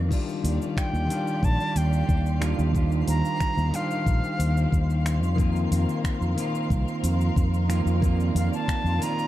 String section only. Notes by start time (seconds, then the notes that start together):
0.10 D#3 G4 D5 F5
2.75 C5
5.39 A#4 C5
8.02 D5